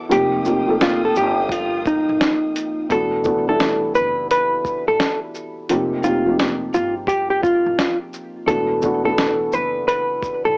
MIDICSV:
0, 0, Header, 1, 6, 480
1, 0, Start_track
1, 0, Tempo, 697674
1, 76, Time_signature, 4, 2, 24, 8
1, 7276, End_track
2, 0, Start_track
2, 0, Title_t, "String section"
2, 0, Program_c, 0, 48
2, 69, Note_on_c, 0, 79, 74
2, 70, Note_on_c, 0, 58, 79
2, 70, Note_on_c, 0, 77, 68
2, 70, Note_on_c, 0, 87, 90
2, 1973, Note_off_c, 0, 79, 0
2, 1974, Note_off_c, 0, 58, 0
2, 1974, Note_off_c, 0, 77, 0
2, 1974, Note_off_c, 0, 87, 0
2, 7276, End_track
3, 0, Start_track
3, 0, Title_t, "Hollow-body jazz guitar"
3, 0, Program_c, 1, 26
3, 83, Note_on_c, 1, 67, 112
3, 532, Note_off_c, 1, 67, 0
3, 567, Note_on_c, 1, 65, 89
3, 700, Note_off_c, 1, 65, 0
3, 722, Note_on_c, 1, 69, 69
3, 794, Note_off_c, 1, 69, 0
3, 807, Note_on_c, 1, 67, 77
3, 1043, Note_off_c, 1, 67, 0
3, 1043, Note_on_c, 1, 65, 74
3, 1256, Note_off_c, 1, 65, 0
3, 1288, Note_on_c, 1, 63, 66
3, 1974, Note_off_c, 1, 63, 0
3, 2009, Note_on_c, 1, 69, 101
3, 2372, Note_off_c, 1, 69, 0
3, 2401, Note_on_c, 1, 69, 59
3, 2703, Note_off_c, 1, 69, 0
3, 2720, Note_on_c, 1, 71, 82
3, 2934, Note_off_c, 1, 71, 0
3, 2967, Note_on_c, 1, 71, 84
3, 3331, Note_off_c, 1, 71, 0
3, 3357, Note_on_c, 1, 69, 67
3, 3569, Note_off_c, 1, 69, 0
3, 4156, Note_on_c, 1, 65, 67
3, 4372, Note_off_c, 1, 65, 0
3, 4639, Note_on_c, 1, 65, 70
3, 4775, Note_off_c, 1, 65, 0
3, 4870, Note_on_c, 1, 67, 77
3, 5010, Note_off_c, 1, 67, 0
3, 5024, Note_on_c, 1, 67, 72
3, 5105, Note_off_c, 1, 67, 0
3, 5114, Note_on_c, 1, 65, 73
3, 5484, Note_off_c, 1, 65, 0
3, 5832, Note_on_c, 1, 69, 98
3, 6203, Note_off_c, 1, 69, 0
3, 6228, Note_on_c, 1, 69, 62
3, 6561, Note_off_c, 1, 69, 0
3, 6561, Note_on_c, 1, 71, 84
3, 6774, Note_off_c, 1, 71, 0
3, 6796, Note_on_c, 1, 71, 82
3, 7165, Note_off_c, 1, 71, 0
3, 7191, Note_on_c, 1, 69, 66
3, 7276, Note_off_c, 1, 69, 0
3, 7276, End_track
4, 0, Start_track
4, 0, Title_t, "Felt piano"
4, 0, Program_c, 2, 0
4, 0, Control_c, 2, 64, 127
4, 63, Note_on_c, 2, 53, 80
4, 65, Note_on_c, 2, 58, 78
4, 71, Note_on_c, 2, 60, 74
4, 76, Note_on_c, 2, 63, 83
4, 80, Note_on_c, 2, 67, 95
4, 84, Control_c, 2, 64, 0
4, 195, Control_c, 2, 64, 127
4, 281, Note_off_c, 2, 53, 0
4, 282, Note_off_c, 2, 58, 0
4, 285, Note_off_c, 2, 60, 0
4, 287, Note_off_c, 2, 63, 0
4, 289, Note_off_c, 2, 67, 0
4, 314, Note_on_c, 2, 53, 74
4, 319, Note_on_c, 2, 58, 68
4, 325, Note_on_c, 2, 60, 62
4, 330, Note_on_c, 2, 63, 69
4, 334, Note_on_c, 2, 67, 69
4, 443, Note_off_c, 2, 53, 0
4, 445, Note_off_c, 2, 58, 0
4, 448, Note_off_c, 2, 60, 0
4, 451, Note_off_c, 2, 63, 0
4, 452, Note_off_c, 2, 67, 0
4, 459, Note_on_c, 2, 53, 71
4, 465, Note_on_c, 2, 58, 61
4, 470, Note_on_c, 2, 60, 65
4, 473, Note_on_c, 2, 63, 61
4, 477, Note_on_c, 2, 69, 80
4, 1243, Note_off_c, 2, 53, 0
4, 1246, Note_off_c, 2, 58, 0
4, 1249, Note_off_c, 2, 60, 0
4, 1250, Note_off_c, 2, 63, 0
4, 1252, Note_off_c, 2, 69, 0
4, 1990, Note_on_c, 2, 52, 62
4, 1993, Note_on_c, 2, 57, 60
4, 2001, Note_on_c, 2, 59, 56
4, 2004, Control_c, 2, 64, 0
4, 2005, Note_on_c, 2, 62, 57
4, 2012, Note_on_c, 2, 66, 74
4, 2115, Control_c, 2, 64, 127
4, 2204, Note_off_c, 2, 52, 0
4, 2206, Note_off_c, 2, 57, 0
4, 2210, Note_off_c, 2, 59, 0
4, 2211, Note_off_c, 2, 62, 0
4, 2215, Note_off_c, 2, 66, 0
4, 2225, Note_on_c, 2, 52, 71
4, 2232, Note_on_c, 2, 57, 68
4, 2235, Note_on_c, 2, 59, 65
4, 2241, Note_on_c, 2, 62, 63
4, 2246, Note_on_c, 2, 66, 74
4, 2358, Note_off_c, 2, 52, 0
4, 2361, Note_off_c, 2, 57, 0
4, 2363, Note_off_c, 2, 59, 0
4, 2366, Note_off_c, 2, 62, 0
4, 2368, Note_off_c, 2, 66, 0
4, 2387, Note_on_c, 2, 52, 69
4, 2392, Note_on_c, 2, 55, 45
4, 2396, Note_on_c, 2, 59, 57
4, 2403, Note_on_c, 2, 62, 64
4, 2406, Note_on_c, 2, 64, 78
4, 2423, Note_off_c, 2, 55, 0
4, 2439, Note_on_c, 2, 57, 66
4, 3167, Note_off_c, 2, 52, 0
4, 3172, Note_off_c, 2, 59, 0
4, 3175, Note_off_c, 2, 62, 0
4, 3177, Note_off_c, 2, 64, 0
4, 3193, Note_off_c, 2, 57, 0
4, 3916, Note_on_c, 2, 53, 85
4, 3920, Note_on_c, 2, 58, 69
4, 3926, Control_c, 2, 64, 0
4, 3927, Note_on_c, 2, 60, 77
4, 3931, Note_on_c, 2, 63, 66
4, 3938, Note_on_c, 2, 67, 94
4, 4064, Control_c, 2, 64, 127
4, 4127, Note_off_c, 2, 53, 0
4, 4129, Note_off_c, 2, 58, 0
4, 4132, Note_off_c, 2, 60, 0
4, 4135, Note_off_c, 2, 63, 0
4, 4138, Note_off_c, 2, 67, 0
4, 4152, Note_on_c, 2, 53, 69
4, 4157, Note_on_c, 2, 58, 63
4, 4165, Note_on_c, 2, 60, 65
4, 4169, Note_on_c, 2, 63, 60
4, 4174, Note_on_c, 2, 67, 80
4, 4281, Note_off_c, 2, 53, 0
4, 4284, Note_off_c, 2, 58, 0
4, 4288, Note_off_c, 2, 60, 0
4, 4290, Note_off_c, 2, 63, 0
4, 4293, Note_off_c, 2, 67, 0
4, 4303, Note_on_c, 2, 53, 63
4, 4309, Note_on_c, 2, 58, 65
4, 4314, Note_on_c, 2, 60, 58
4, 4321, Note_on_c, 2, 63, 65
4, 4327, Note_on_c, 2, 67, 78
4, 5085, Note_off_c, 2, 53, 0
4, 5088, Note_off_c, 2, 58, 0
4, 5091, Note_off_c, 2, 60, 0
4, 5094, Note_off_c, 2, 63, 0
4, 5097, Note_off_c, 2, 67, 0
4, 5822, Note_on_c, 2, 52, 65
4, 5829, Note_on_c, 2, 57, 62
4, 5834, Note_on_c, 2, 59, 61
4, 5841, Note_on_c, 2, 62, 65
4, 5844, Note_on_c, 2, 66, 72
4, 5846, Control_c, 2, 64, 0
4, 5945, Control_c, 2, 64, 127
4, 6040, Note_off_c, 2, 52, 0
4, 6043, Note_off_c, 2, 57, 0
4, 6046, Note_off_c, 2, 59, 0
4, 6049, Note_off_c, 2, 62, 0
4, 6051, Note_off_c, 2, 66, 0
4, 6067, Note_on_c, 2, 52, 73
4, 6072, Note_on_c, 2, 57, 60
4, 6080, Note_on_c, 2, 59, 63
4, 6083, Note_on_c, 2, 62, 70
4, 6088, Note_on_c, 2, 66, 84
4, 6199, Note_off_c, 2, 52, 0
4, 6201, Note_off_c, 2, 57, 0
4, 6205, Note_off_c, 2, 59, 0
4, 6207, Note_off_c, 2, 62, 0
4, 6209, Note_off_c, 2, 66, 0
4, 6218, Note_on_c, 2, 52, 69
4, 6221, Note_on_c, 2, 57, 61
4, 6229, Note_on_c, 2, 59, 68
4, 6232, Note_on_c, 2, 62, 67
4, 6237, Note_on_c, 2, 69, 71
4, 7002, Note_off_c, 2, 52, 0
4, 7004, Note_off_c, 2, 57, 0
4, 7008, Note_off_c, 2, 59, 0
4, 7010, Note_off_c, 2, 62, 0
4, 7012, Note_off_c, 2, 69, 0
4, 7276, End_track
5, 0, Start_track
5, 0, Title_t, "Upright bass"
5, 0, Program_c, 3, 32
5, 82, Note_on_c, 3, 29, 106
5, 771, Note_off_c, 3, 29, 0
5, 802, Note_on_c, 3, 31, 101
5, 1404, Note_off_c, 3, 31, 0
5, 1437, Note_on_c, 3, 33, 90
5, 1507, Note_off_c, 3, 33, 0
5, 2001, Note_on_c, 3, 28, 97
5, 2691, Note_off_c, 3, 28, 0
5, 2727, Note_on_c, 3, 30, 83
5, 3326, Note_off_c, 3, 30, 0
5, 3359, Note_on_c, 3, 33, 80
5, 3428, Note_off_c, 3, 33, 0
5, 3928, Note_on_c, 3, 29, 99
5, 4614, Note_off_c, 3, 29, 0
5, 4648, Note_on_c, 3, 31, 92
5, 5247, Note_off_c, 3, 31, 0
5, 5272, Note_on_c, 3, 33, 85
5, 5343, Note_off_c, 3, 33, 0
5, 5838, Note_on_c, 3, 28, 93
5, 6529, Note_off_c, 3, 28, 0
5, 6564, Note_on_c, 3, 30, 83
5, 7165, Note_off_c, 3, 30, 0
5, 7198, Note_on_c, 3, 33, 83
5, 7267, Note_off_c, 3, 33, 0
5, 7276, End_track
6, 0, Start_track
6, 0, Title_t, "Drums"
6, 77, Note_on_c, 9, 42, 69
6, 146, Note_off_c, 9, 42, 0
6, 310, Note_on_c, 9, 82, 51
6, 379, Note_off_c, 9, 82, 0
6, 557, Note_on_c, 9, 42, 55
6, 559, Note_on_c, 9, 38, 103
6, 625, Note_off_c, 9, 42, 0
6, 627, Note_off_c, 9, 38, 0
6, 796, Note_on_c, 9, 82, 47
6, 865, Note_off_c, 9, 82, 0
6, 1028, Note_on_c, 9, 36, 77
6, 1044, Note_on_c, 9, 42, 71
6, 1096, Note_off_c, 9, 36, 0
6, 1113, Note_off_c, 9, 42, 0
6, 1277, Note_on_c, 9, 36, 84
6, 1279, Note_on_c, 9, 82, 45
6, 1345, Note_off_c, 9, 36, 0
6, 1348, Note_off_c, 9, 82, 0
6, 1520, Note_on_c, 9, 38, 106
6, 1522, Note_on_c, 9, 42, 59
6, 1588, Note_off_c, 9, 38, 0
6, 1591, Note_off_c, 9, 42, 0
6, 1761, Note_on_c, 9, 42, 46
6, 1761, Note_on_c, 9, 82, 44
6, 1830, Note_off_c, 9, 42, 0
6, 1830, Note_off_c, 9, 82, 0
6, 1996, Note_on_c, 9, 36, 100
6, 1999, Note_on_c, 9, 42, 70
6, 2065, Note_off_c, 9, 36, 0
6, 2067, Note_off_c, 9, 42, 0
6, 2231, Note_on_c, 9, 82, 45
6, 2243, Note_on_c, 9, 36, 89
6, 2300, Note_off_c, 9, 82, 0
6, 2311, Note_off_c, 9, 36, 0
6, 2478, Note_on_c, 9, 42, 53
6, 2480, Note_on_c, 9, 38, 101
6, 2547, Note_off_c, 9, 42, 0
6, 2549, Note_off_c, 9, 38, 0
6, 2718, Note_on_c, 9, 82, 42
6, 2786, Note_off_c, 9, 82, 0
6, 2963, Note_on_c, 9, 42, 66
6, 3032, Note_off_c, 9, 42, 0
6, 3198, Note_on_c, 9, 36, 83
6, 3202, Note_on_c, 9, 82, 41
6, 3266, Note_off_c, 9, 36, 0
6, 3271, Note_off_c, 9, 82, 0
6, 3439, Note_on_c, 9, 38, 102
6, 3442, Note_on_c, 9, 42, 52
6, 3508, Note_off_c, 9, 38, 0
6, 3511, Note_off_c, 9, 42, 0
6, 3679, Note_on_c, 9, 82, 47
6, 3748, Note_off_c, 9, 82, 0
6, 3917, Note_on_c, 9, 42, 68
6, 3986, Note_off_c, 9, 42, 0
6, 4151, Note_on_c, 9, 82, 47
6, 4220, Note_off_c, 9, 82, 0
6, 4399, Note_on_c, 9, 42, 54
6, 4401, Note_on_c, 9, 38, 100
6, 4467, Note_off_c, 9, 42, 0
6, 4469, Note_off_c, 9, 38, 0
6, 4634, Note_on_c, 9, 82, 44
6, 4703, Note_off_c, 9, 82, 0
6, 4865, Note_on_c, 9, 36, 82
6, 4879, Note_on_c, 9, 42, 70
6, 4934, Note_off_c, 9, 36, 0
6, 4948, Note_off_c, 9, 42, 0
6, 5114, Note_on_c, 9, 36, 85
6, 5117, Note_on_c, 9, 82, 43
6, 5183, Note_off_c, 9, 36, 0
6, 5185, Note_off_c, 9, 82, 0
6, 5357, Note_on_c, 9, 38, 100
6, 5360, Note_on_c, 9, 42, 54
6, 5426, Note_off_c, 9, 38, 0
6, 5428, Note_off_c, 9, 42, 0
6, 5596, Note_on_c, 9, 82, 41
6, 5665, Note_off_c, 9, 82, 0
6, 5833, Note_on_c, 9, 36, 104
6, 5837, Note_on_c, 9, 42, 65
6, 5902, Note_off_c, 9, 36, 0
6, 5906, Note_off_c, 9, 42, 0
6, 6068, Note_on_c, 9, 82, 47
6, 6080, Note_on_c, 9, 36, 91
6, 6137, Note_off_c, 9, 82, 0
6, 6148, Note_off_c, 9, 36, 0
6, 6316, Note_on_c, 9, 42, 57
6, 6318, Note_on_c, 9, 38, 103
6, 6384, Note_off_c, 9, 42, 0
6, 6386, Note_off_c, 9, 38, 0
6, 6553, Note_on_c, 9, 82, 42
6, 6622, Note_off_c, 9, 82, 0
6, 6801, Note_on_c, 9, 42, 71
6, 6870, Note_off_c, 9, 42, 0
6, 7035, Note_on_c, 9, 36, 84
6, 7038, Note_on_c, 9, 82, 44
6, 7104, Note_off_c, 9, 36, 0
6, 7107, Note_off_c, 9, 82, 0
6, 7276, End_track
0, 0, End_of_file